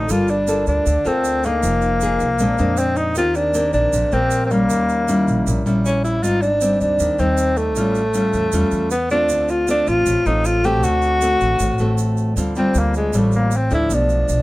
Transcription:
Already playing: tenor saxophone D#4
0.09 upright bass G1, nylon-string guitar G3 A#3 F4 A4, tenor saxophone F4, shaker
0.28 tenor saxophone D4, shaker
0.47 nylon-string guitar A#3 F4 A4, shaker
0.67 upright bass D2, tenor saxophone D4, shaker
0.86 upright bass D2, nylon-string guitar D3, shaker
1.05 upright bass D2, nylon-string guitar A#3 F4 A4, tenor saxophone C4, shaker
1.24 shaker
1.43 nylon-string guitar A#3 D#4 G#4, tenor saxophone A#3, shaker
1.63 upright bass F1, nylon-string guitar F3, shaker
1.81 shaker
2.01 nylon-string guitar A#3 D#4 G#4, shaker
2.20 upright bass C2, shaker
2.39 upright bass A#1, nylon-string guitar A#2 G#3 C4 D4, shaker
2.58 upright bass F2, nylon-string guitar G#3 C4 D4, shaker
2.77 tenor saxophone C4, shaker
2.96 tenor saxophone D#4, shaker
3.15 upright bass D#2, nylon-string guitar D#3 A#3 C4 G4, tenor saxophone F4, shaker
3.35 tenor saxophone D4, shaker
3.54 nylon-string guitar A#3 C4 G4, shaker
3.73 upright bass A#1, tenor saxophone D4, shaker
3.93 upright bass A#1, nylon-string guitar A#2, shaker
4.12 upright bass A#1, nylon-string guitar A#3 C4 G4, tenor saxophone C4, shaker
4.31 shaker
4.46 tenor saxophone C4
4.51 nylon-string guitar G3 C#4, tenor saxophone A#3, shaker
4.69 upright bass D#2, nylon-string guitar D#3, shaker
4.89 shaker
5.08 nylon-string guitar G3 C#4 E4, shaker
5.28 upright bass A#1, shaker
5.47 upright bass A#1, nylon-string guitar A#2, shaker
5.66 upright bass A#1, nylon-string guitar G3 C#4 E4, shaker
5.84 tenor saxophone C#4, shaker
6.04 tenor saxophone E4, shaker
6.23 upright bass G#1, nylon-string guitar G#2 G3 C4 D#4, tenor saxophone F4, shaker
6.42 tenor saxophone D4, shaker
6.61 nylon-string guitar G3 C4, shaker
6.80 upright bass D#2, tenor saxophone D4, shaker
6.99 upright bass D#2, nylon-string guitar D#3, shaker
7.19 upright bass D#2, nylon-string guitar G3 C4 D#4, tenor saxophone C4, shaker
7.37 shaker
7.57 tenor saxophone A3, shaker
7.76 upright bass A1, nylon-string guitar A2 G3 C#4 F4, shaker
7.95 shaker
8.14 nylon-string guitar G3 C#4 F4, shaker
8.33 upright bass E2, shaker
8.52 upright bass E2, nylon-string guitar G3 C#4 F4, shaker
8.71 upright bass E2, shaker
8.91 tenor saxophone B3, shaker
9.10 nylon-string guitar A3 C4 F4, tenor saxophone D4, shaker
9.29 upright bass D2, nylon-string guitar D3, shaker
9.48 tenor saxophone F4, shaker
9.68 nylon-string guitar A3 C4 F4, tenor saxophone D4, shaker
9.87 upright bass A1, tenor saxophone F4, shaker
10.06 upright bass A1, nylon-string guitar A2, shaker
10.26 upright bass A1, nylon-string guitar A3 C4 F4, tenor saxophone D#4, shaker
10.45 tenor saxophone F4, shaker
10.64 nylon-string guitar A3 C4 F#4, tenor saxophone G4, shaker
10.83 upright bass D2, nylon-string guitar D3, tenor saxophone F#4, shaker
11.02 shaker
11.21 nylon-string guitar A3 C4 F#4, shaker
11.40 upright bass A1, shaker
11.59 upright bass A1, nylon-string guitar A2, shaker
11.78 upright bass A1, nylon-string guitar A3 C4 F#4, shaker
11.98 shaker
12.17 shaker
12.36 upright bass D2, nylon-string guitar D3 G3 C4 F4, shaker
12.55 nylon-string guitar G3 C4 F4, tenor saxophone C4, shaker
12.74 upright bass D2, shaker
12.79 tenor saxophone A#3
12.94 tenor saxophone G#3, shaker
13.13 upright bass A1, nylon-string guitar A2 G3 C4 F4, shaker
13.18 tenor saxophone A3
13.32 tenor saxophone A#3, shaker
13.51 shaker
13.56 tenor saxophone C4
13.71 upright bass D2, nylon-string guitar F3 A3 D4, tenor saxophone E4, shaker
13.89 upright bass B1, nylon-string guitar B2, shaker
13.94 tenor saxophone D4
14.09 shaker
14.29 upright bass B1, shaker

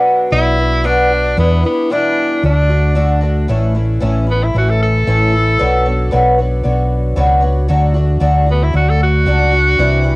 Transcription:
Already playing: twelve-string acoustic guitar B2 F#3 B3 D4 F#4
0.31 fingered electric bass B1, twelve-string acoustic guitar F#3 B3 D4 F#4, tenor saxophone E4
0.58 twelve-string acoustic guitar B3 D4 F#4
0.84 twelve-string acoustic guitar B2 F#3 B3 D4 F#4, tenor saxophone D4
1.10 twelve-string acoustic guitar B3 D4 F#4
1.37 twelve-string acoustic guitar E2 B2 E3 G3 D4 E4, fingered electric bass E2, tenor saxophone B3
1.64 twelve-string acoustic guitar E3 G3 D4 E4, tenor saxophone B3
1.90 twelve-string acoustic guitar E2 B2 E3 G3 D4 E4, tenor saxophone D4
2.43 fingered electric bass D2, twelve-string acoustic guitar D3 A3 D4 F#4, tenor saxophone D4
2.69 twelve-string acoustic guitar A3 D4 F#4
2.95 twelve-string acoustic guitar D3 A3 D4 F#4
3.21 twelve-string acoustic guitar A3 D4 F#4
3.48 fingered electric bass A1, twelve-string acoustic guitar A2 E3 A3 C#4 E4
3.75 twelve-string acoustic guitar A3 C#4 E4
4.00 fingered electric bass A1, twelve-string acoustic guitar A2 E3 A3 C#4 E4
4.27 twelve-string acoustic guitar A3 C#4 E4
4.31 tenor saxophone B3
4.44 tenor saxophone E4
4.54 fingered electric bass A1, twelve-string acoustic guitar E3 A3 C#4 E4, tenor saxophone F#4
4.70 tenor saxophone A4
4.83 tenor saxophone A4
5.07 fingered electric bass A1, twelve-string acoustic guitar A2 E3 A3 C#4 E4
5.33 twelve-string acoustic guitar A3 C#4 E4
5.59 fingered electric bass B1, twelve-string acoustic guitar B2 F#3 B3 D4 F#4 C#5
5.86 twelve-string acoustic guitar B3 D4 F#4 C#5
6.11 fingered electric bass B1, twelve-string acoustic guitar B2 F#3 B3 D4 F#4 C#5
6.38 twelve-string acoustic guitar B3 D4 F#4 C#5
6.63 fingered electric bass B1, twelve-string acoustic guitar B3 D4 F#4 C#5
7.16 fingered electric bass C#2, twelve-string acoustic guitar B2 F#3 B3 D4 F#4 C#5
7.41 twelve-string acoustic guitar B3 D4 F#4 C#5
7.68 fingered electric bass D2, twelve-string acoustic guitar D3 F#3 A3 D4 F#4
7.94 twelve-string acoustic guitar A3 D4 F#4
8.20 fingered electric bass D2, twelve-string acoustic guitar D3 F#3 A3 D4 F#4
8.46 twelve-string acoustic guitar A3 D4 F#4
8.51 tenor saxophone B3
8.63 tenor saxophone E4
8.73 fingered electric bass D2, twelve-string acoustic guitar F#3 A3 D4 F#4, tenor saxophone F#4
8.90 tenor saxophone A4
9.03 tenor saxophone F#4
9.26 fingered electric bass C#2, twelve-string acoustic guitar D3 F#3 A3 D4 F#4
9.53 twelve-string acoustic guitar A3 D4 F#4
9.78 fingered electric bass C2, twelve-string acoustic guitar C3 E3 G3 D4 E4
10.04 twelve-string acoustic guitar G3 D4 E4

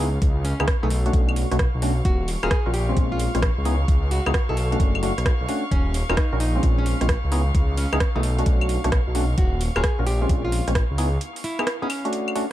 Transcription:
Already playing: detuned saw bass C#2, violin section F5 C#6
0.22 detuned saw bass C#2, kick, closed hi-hat
0.45 nylon-string guitar C#4, open hi-hat
0.60 detuned saw bass C#2, synth stab B3 D#4 E4 G#4, cross-stick, claves
0.68 kick, cross-stick, closed hi-hat
0.83 detuned saw bass B1, nylon-string guitar A3, synth stab B3 D#4 E4 G#4
0.90 open hi-hat
1.06 synth stab A3 C#4 D4 F#4, closed hi-hat
1.13 detuned saw bass B1, kick, closed hi-hat
1.29 claves
1.36 open hi-hat
1.51 detuned saw bass B1, synth stab A3 C#4 D4 F#4, cross-stick, closed hi-hat
1.59 kick, cross-stick, closed hi-hat
1.75 detuned saw bass B1
1.82 synth stab A3 C#4 D4 F#4, open hi-hat
2.05 detuned saw bass D#1, nylon-string guitar F#4, kick, closed hi-hat
2.28 open hi-hat
2.43 detuned saw bass D#1, synth stab C#4 F4 F#4 A#4, nylon-string guitar G#4, cross-stick, claves
2.51 kick, cross-stick, closed hi-hat
2.66 detuned saw bass A#1, synth stab C#4 F4 F#4 A#4
2.74 nylon-string guitar G4, open hi-hat
2.89 synth stab G#3 C4 C#4 F4
2.97 detuned saw bass A#1, kick, closed hi-hat
3.12 nylon-string guitar F4
3.19 open hi-hat
3.35 detuned saw bass A#1, synth stab G#3 C4 C#4 F4, cross-stick, closed hi-hat
3.42 kick, cross-stick, closed hi-hat
3.58 detuned saw bass C#2
3.65 synth stab B3 D#4 E4 G#4, open hi-hat
3.88 detuned saw bass C#2, kick, closed hi-hat
4.11 nylon-string guitar F#4, open hi-hat
4.26 detuned saw bass C#2, synth stab B3 D#4 E4 G#4, cross-stick, claves
4.34 kick, cross-stick, closed hi-hat
4.49 detuned saw bass B1, synth stab B3 D#4 E4 G#4, nylon-string guitar A4
4.57 open hi-hat
4.72 synth stab A3 C#4 D4 F#4, closed hi-hat
4.80 detuned saw bass F#1, kick, closed hi-hat
4.95 claves
5.03 synth stab A3 C#4 D4 F#4, open hi-hat
5.18 detuned saw bass B1, cross-stick, closed hi-hat
5.26 kick, cross-stick, closed hi-hat
5.41 detuned saw bass B1
5.49 synth stab A3 C#4 D4 F#4, open hi-hat
5.71 detuned saw bass D#1, nylon-string guitar C#4, kick, closed hi-hat
5.94 open hi-hat
6.09 detuned saw bass D#1, synth stab C#4 F4 F#4 A#4, nylon-string guitar D#4, cross-stick, claves
6.17 kick, cross-stick, closed hi-hat
6.32 detuned saw bass A#1, synth stab C#4 F4 F#4 A#4
6.40 nylon-string guitar D#4, open hi-hat
6.55 synth stab G#3 C4 C#4 F4
6.63 detuned saw bass A#1, kick, closed hi-hat
6.78 nylon-string guitar C#4
6.86 open hi-hat
7.01 detuned saw bass A#1, synth stab G#3 C4 C#4 F4, cross-stick, closed hi-hat
7.09 kick, cross-stick, closed hi-hat
7.24 detuned saw bass C#2
7.32 synth stab B3 D#4 E4 G#4, open hi-hat
7.55 detuned saw bass C#2, kick, closed hi-hat
7.77 nylon-string guitar C#4, open hi-hat
7.93 detuned saw bass C#2, synth stab B3 D#4 E4 G#4, cross-stick, claves
8.00 kick, cross-stick, closed hi-hat
8.15 detuned saw bass B1, nylon-string guitar A3, synth stab B3 D#4 E4 G#4
8.23 open hi-hat
8.38 synth stab A3 C#4 D4 F#4, closed hi-hat
8.46 detuned saw bass B1, kick, closed hi-hat
8.61 claves
8.69 open hi-hat
8.84 detuned saw bass B1, synth stab A3 C#4 D4 F#4, cross-stick, closed hi-hat
8.92 kick, cross-stick, closed hi-hat
9.07 detuned saw bass B1
9.15 synth stab A3 C#4 D4 F#4, open hi-hat
9.38 detuned saw bass D#1, nylon-string guitar F#4, kick, closed hi-hat
9.61 open hi-hat
9.76 detuned saw bass D#1, synth stab C#4 F4 F#4 A#4, nylon-string guitar G#4, cross-stick, claves
9.84 kick, cross-stick, closed hi-hat
9.99 detuned saw bass A#1, synth stab C#4 F4 F#4 A#4
10.07 nylon-string guitar G4, open hi-hat
10.22 synth stab G#3 C4 C#4 F4
10.29 detuned saw bass A#1, kick, closed hi-hat
10.45 nylon-string guitar F4
10.52 open hi-hat
10.68 detuned saw bass A#1, synth stab G#3 C4 C#4 F4, cross-stick, closed hi-hat
10.75 kick, cross-stick, closed hi-hat
10.91 detuned saw bass C#2
10.98 synth stab B3 D#4 E4 G#4, open hi-hat
11.21 closed hi-hat
11.36 open hi-hat
11.44 nylon-string guitar E4, open hi-hat
11.59 synth stab B3 D#4 E4 G#4, cross-stick, claves
11.67 cross-stick, closed hi-hat
11.82 synth stab B3 D#4 E4 G#4, nylon-string guitar C#4
11.90 open hi-hat, claves
12.05 synth stab A3 C#4 D4 F#4, closed hi-hat
12.13 closed hi-hat
12.28 claves
12.35 synth stab A3 C#4 D4 F#4, open hi-hat

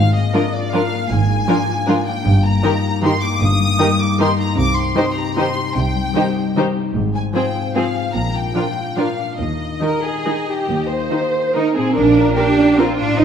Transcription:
Already playing: double bass section G#1, cello section G#2, harp G#2 F4, violin section F5
0.14 harp A#3, violin section D#5
0.34 viola section F3 D4, harp D4, violin section F4 A#4
0.53 harp F4, violin section D5
0.73 viola section F3 D4, harp D4, violin section F4 A#4 F5
0.93 harp A#3
1.10 double bass section G#1, harp G#2, cello section G#2, violin section G#5
1.29 harp G#3
1.48 viola section F3 D4, harp D4, violin section F4 A#4
1.68 harp F4
1.88 viola section F3 D4, harp D4, violin section F4 A#4
2.07 harp A#3, violin section G5
2.25 double bass section G1, harp G2, cello section G2
2.44 harp A#3, violin section A#5
2.64 viola section D#3 D#4, harp D#4, violin section G4 A#4
2.83 harp G4
3.03 viola section D#3 D#4, harp D#4, violin section G4 A#4 C6
3.22 harp A#3, violin section D6
3.41 double bass section G1, cello section G2, harp G2, violin section D#6
3.59 harp G3
3.79 viola section D#3 D#4, harp D#4, violin section G4 A#4
3.98 harp G4, violin section D6
4.19 viola section D#3 D#4, harp D#4, violin section G4 A#4 C6
4.39 harp A#3, violin section A#5
4.58 double bass section C2, harp C3, cello section C3, violin section D6
4.76 harp C4, violin section C6
4.96 viola section D#3 D#4, violin section G4 C5
5.17 harp G4, violin section A#5
5.37 viola section D#3 D#4, harp D#4, violin section G4 C5 C6
5.57 harp C4
5.76 double bass section C2, cello section C3, harp C3, violin section G5
5.95 harp G3
6.16 viola section D#3 D#4, harp D#4, violin section G4 C5
6.37 harp G4
6.57 viola section D#3 D#4, harp D#4, violin section G4 C5
6.77 harp C4
6.95 double bass section G#1, cello section G#2, harp G#2
7.14 harp C4, violin section G#5
7.34 viola section F3 C4, harp F4, violin section G#4 C5 G5
7.55 harp C5
7.75 viola section F3 C4, harp F4, violin section G#4 C5 F5
7.96 harp C4
8.14 double bass section A#1, harp A#2, cello section A#2, violin section A#5
8.34 harp D4, violin section G5
8.55 viola section F3 D4, harp F4, violin section F4 A#4
8.76 harp A#4
8.97 viola section F3 D4, harp F4, violin section F4 A#4 F5
9.19 harp D4
9.38 double bass section D#2, cello section D#2, harp D#3, violin section D#5
9.60 harp D#4
9.81 viola section D#3 D#4, harp G4, violin section A#4
10.04 violin section G#4, harp A#4
10.26 viola section D#3 D#4, harp G4
10.48 harp D#4, violin section G4
10.68 double bass section D#2, cello section D#2, harp D#3
10.89 harp A#3, violin section C5
11.11 viola section D#3 D#4, harp G4
11.33 harp A#4
11.55 viola section D#3 D#4, cello section D#4, harp G4, violin section A#4
11.76 harp A#2 D#4, cello section C4, violin section G#4
11.82 harp D4
11.87 harp F4
11.91 harp A#4
11.95 double bass section A#1, cello section D4, violin section A#4
12.36 cello section D4, viola section F4 A#4, violin section G4 F5
12.78 cello section C4, violin section F4 F5, viola section F4 A#4
12.99 harp A2, cello section D4
13.06 harp C4
13.10 harp F4
13.15 harp C5
13.19 double bass section A1, cello section D#4, violin section C5

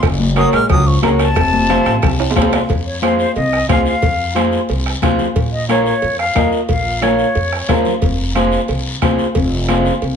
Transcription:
0.03 upright bass F#1, bombo low, bombo rim, cowbell, long guiro
0.20 high conga
0.36 trombone F#3, clean electric guitar F#4 A#4 C#5, flute D#6, bombo rim, high conga, short guiro
0.53 upright bass A#1, trombone G#3, flute F6, bombo rim, short guiro
0.69 upright bass C#2, trombone F#3, flute D#6, bombo low, bombo rim, cowbell, low conga, long guiro
0.87 trombone F3, flute C#6
1.02 upright bass C#2, trombone C#3, clean electric guitar F#4 A#4 C#5, flute A#5, bombo rim, high conga, low timbale, short guiro
1.19 trombone C3, flute A5, bombo rim, short guiro
1.36 upright bass F1, bombo low, bombo rim, cowbell, long guiro
1.53 high conga
1.69 clean electric guitar F4 A4 C5, bombo rim, high conga, short guiro
1.86 upright bass A1, bombo rim, short guiro
2.02 upright bass C2, bombo low, bombo rim, cowbell, low conga, long guiro
2.20 high timbale
2.31 low timbale
2.35 upright bass C2, clean electric guitar F4 A4 C5, bombo low, bombo rim, high conga, short guiro
2.42 low timbale
2.52 bombo rim, low timbale, short guiro
2.69 upright bass F2, bombo low, cowbell, high conga, long guiro
2.86 flute C#5
3.02 clean electric guitar F4 G#4 C5, flute C5, bombo rim, cowbell, high conga, short guiro
3.19 flute C5, short guiro
3.36 upright bass C2, flute D#5, cowbell, high conga, long guiro
3.53 bombo rim
3.69 upright bass C2, clean electric guitar F4 G#4 C5, flute F5, bombo low, bombo rim, cowbell, high conga, low timbale, short guiro
3.86 flute F5, short guiro
4.02 upright bass F2, bombo low, cowbell, high conga, long guiro
4.35 clean electric guitar F4 G#4 C5, bombo rim, cowbell, high conga, short guiro
4.52 short guiro
4.69 upright bass C2, cowbell, high conga, long guiro
4.86 bombo rim
5.02 upright bass C2, clean electric guitar F4 G#4 C5, bombo low, bombo rim, cowbell, high conga, low conga, short guiro
5.19 low conga, short guiro
5.36 upright bass A#1, bombo low, cowbell, high conga, long guiro
5.52 flute D#5
5.69 clean electric guitar F4 A#4 C#5, flute C#5, bombo rim, cowbell, high conga, short guiro
5.86 flute C#5, short guiro
6.02 upright bass F2, cowbell, high conga, long guiro
6.19 flute F5, bombo rim
6.35 upright bass F2, clean electric guitar F4 A#4 D#5, bombo low, bombo rim, cowbell, high conga, short guiro
6.52 short guiro
6.69 upright bass A#1, flute F5, bombo low, cowbell, high conga, long guiro
7.01 clean electric guitar F4 A#4 C#5, flute C#5, bombo rim, cowbell, high conga, short guiro
7.19 short guiro
7.35 upright bass F2, cowbell, high conga, long guiro
7.53 bombo rim
7.68 upright bass F2, clean electric guitar F4 A#4 C5, bombo low, bombo rim, cowbell, high conga, low conga, low timbale, short guiro
7.85 low conga, short guiro
8.02 upright bass F1, bombo low, cowbell, high conga, long guiro
8.35 clean electric guitar F4 G#4 C5, bombo rim, cowbell, high conga, short guiro
8.52 short guiro
8.68 upright bass C2, cowbell, high conga, long guiro
9.02 upright bass C2, clean electric guitar F4 G#4 C5, bombo low, bombo rim, cowbell, high conga, short guiro
9.19 short guiro
9.35 upright bass F1, bombo low, cowbell, high conga, long guiro
9.68 clean electric guitar F4 G#4 C5, bombo rim, cowbell, high conga, short guiro
9.85 short guiro
10.02 upright bass C2, cowbell, high conga, long guiro

